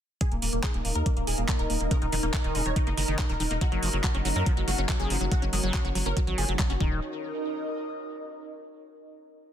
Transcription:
0.21 D#4 G#4 A#4, kick, closed hi-hat
0.32 D#1 A#3, closed hi-hat
0.42 D#1 A#3, open hi-hat
0.53 D#1 A#3 D#5, closed hi-hat
0.63 G#4, kick, clap, closed hi-hat
0.74 D#1 A#3, closed hi-hat
0.84 D#1 A#3 A#4, open hi-hat
0.95 D#2 A#4, closed hi-hat
1.06 A#3, kick, closed hi-hat
1.17 D#1 A#3, closed hi-hat
1.27 D#1 G#4, open hi-hat
1.38 D#1 A#3, closed hi-hat
1.49 A#3, kick, clap, closed hi-hat
1.59 D#1 A#4, closed hi-hat
1.70 D#1 A#3, open hi-hat
1.80 D#1 A#3, closed hi-hat
1.91 C#3 A#4, kick, closed hi-hat
2.02 D#1 D#3 D#4, closed hi-hat
2.12 D#1 D#3 D#4, open hi-hat
2.23 D#1 A#3 D#4, closed hi-hat
2.34 D#3 A#4, kick, clap, closed hi-hat
2.44 D#1 D#3 D#4, closed hi-hat
2.55 D#1 C#3 D#4, open hi-hat
2.66 D#1 D#3 C#5, closed hi-hat
2.76 D#3 D#4, kick, closed hi-hat
2.87 F#1 A#3 D#4, closed hi-hat
2.97 F#1 D#3 A#4, open hi-hat
3.08 F#1 D#3 D#4
3.19 C#3 D#4, kick, clap, closed hi-hat
3.29 D#1 D#3 A#4, closed hi-hat
3.40 D#1 D#3 D#4, open hi-hat
3.51 D#1 A#3 D#4, closed hi-hat
3.61 F#3 C#4 F#4, kick, closed hi-hat
3.72 F#1 F#3, closed hi-hat
3.80 F#1 F3 F#3 F#4, open hi-hat
3.93 F#1 F#3, closed hi-hat
4.04 F#3 F#4, kick, clap, closed hi-hat
4.14 F#1 F#3 C#4, closed hi-hat
4.25 F#1 F#3, open hi-hat
4.36 F#2 F#3 A#3 A#4, closed hi-hat
4.46 F3 F#3, kick, closed hi-hat
4.57 F#1 F#3, closed hi-hat
4.68 F#1 F#3 A#3 F#4, open hi-hat
4.78 F#1 F#3 A#3 C#4, closed hi-hat
4.89 F#3, kick, clap, closed hi-hat
5.00 F#1 F#3 G#4, closed hi-hat
5.10 F#1 F3 F#3, open hi-hat
5.15 C#5
5.21 F#1 F#3, closed hi-hat
5.32 F#3 F#4, kick, closed hi-hat
5.42 F#1 F#3 C#4, closed hi-hat
5.53 F#1 F#3 G#3, open hi-hat
5.63 F#1 F#3
5.74 F3 F#4, kick, clap, closed hi-hat
5.85 F#1 F#3, closed hi-hat
5.95 F#1 F#3, open hi-hat
6.06 F#1 C#4 A#4, closed hi-hat
6.17 F#3, kick, closed hi-hat
6.27 G#1 F#3, closed hi-hat
6.38 F#1 F3 G#4, open hi-hat
6.49 F#1 F#3, closed hi-hat
6.59 F#3, kick, clap, closed hi-hat
6.70 F#1 C#4 F#4, closed hi-hat
6.80 D#1 D#3 D#4, kick
6.87 A#4
7.15 D#5

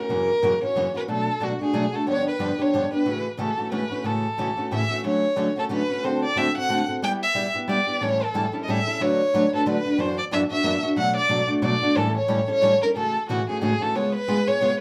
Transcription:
Already playing: A#4
0.09 F#2 C#3 E3 A#3 C#4 F#4
0.42 F#2 C#3 E3 A#3 C#4 F#4
0.62 E3 A#3 C#4 F#4 C#5
0.75 F#2 C#3 E3 A#3 C#4 F#4
0.94 E3 A#3 C#4 F#4 B4
1.08 B2 F#3 A3 D4 F#4 A4
1.40 B2 F#3 A3 D4 F#4
1.59 A3 D4 F#4 G#4
1.73 B2 F#3 A3 D4 F#4
1.93 A3 D4 F#4 A4
2.07 G2 D3 F3 B3 D4 G4 C#5
2.28 B4
2.39 G2 D3 F3 B3 D4 G4
2.58 F3 B3 D4 G4 C#5
2.73 G2 D3 F3 B3 D4 G4
2.92 F3 B3 D4 G4 B4
3.06 A2 C#3 E3 A3 C#4 F#4
3.38 A2 C#3 E3 A3 C#4 F#4 A4
3.58 E3 A3 C#4 F#4
3.72 A2 C#3 E3 A3 C#4 F#4 B4
3.90 E3 A3 C#4 F#4
4.04 A2 C#3 E3 A3 C#4 F#4 A4
4.38 A2 C#3 E3 A3 C#4 F#4
4.57 E3 A3 C#4 F#4
4.71 A2 C#3 E3 A3 C#4 F#4 E5
4.91 E3 A3 C#4 F#4
5.04 D3 F#3 A3 C#4 F#4 C#5
5.36 D3 F#3 A3 C#4 F#4
5.56 A3 C#4 F#4 A4
5.69 D3 F#3 A3 C#4 F#4
5.73 B4
5.89 A3 C#4 F#4
6.03 D3 A3 C4 F#4 A4 C5
6.24 D5
6.36 D3 A3 C4 F#4 A4 E5
6.56 C4 F#4 A4 F#5
6.69 D3 A3 C4 F#4 A4
6.88 C4 F#4 A4
7.02 G3 B3 E4 G4 G5
7.23 E5
7.35 G3 B3 E4 G4
7.54 B3 E4 G4
7.68 G3 B3 E4 G4 D5
7.87 B3 E4 G4
8.01 A2 E3 G3 C#4 E4 A4 C#5
8.23 A4
8.34 A2 E3 G3 C#4 E4 A4
8.52 G3 C#4 E4 A4
8.63 D#5
8.68 A2 E3 G3 C#4 E4 A4 E5
8.87 G3 C#4 E4 A4
9.00 D3 F#3 A3 D4 F#4 B4 C#5
9.34 D3 F#3 A3 D4 F#4 B4
9.53 A3 D4 F#4 A4 B4
9.66 D3 F#3 A3 D4 F#4 B4
9.84 A3 D4 F#4 B4
9.98 F#2 E3 A#3 D4 F#4 C5
10.18 D5
10.31 F#2 E3 A#3 D4 F#4 E5
10.51 A#3 D4 F#4 E5
10.63 F#2 E3 A#3 D4 F#4
10.83 A#3 D4 F#4
10.96 B2 F#3 A3 D4 F#4 F#5
11.16 D5
11.29 B2 F#3 A3 D4 F#4
11.47 A3 D4 F#4
11.62 B2 F#3 A3 D4 F#4 D5
11.82 A3 D4 F#4
11.96 A2 E3 G3 C#4 E4 A4
12.17 C#5
12.28 A2 E3 G3 C#4 E4 A4
12.48 G3 C#4 E4 A4 C#5
12.61 A2 E3 G3 C#4 E4 A4
12.82 G3 C#4 E4 A4 A#4
12.96 A2 C#3 E3 A3 C#4 F#4 A4
13.29 A2 C#3 E3 A3 C#4 F#4
13.49 E3 A3 C#4 F#4 G#4
13.61 A2 C#3 E3 A3 C#4 F#4 G#4
13.80 E3 A3 C#4 F#4 A4
13.95 C#3 G#3 B3 F4 G#4 C#5
14.15 B4
14.28 C#3 G#3 B3 F4 G#4
14.48 B3 F4 G#4 C#5
14.61 C#3 G#3 B3 F4 G#4

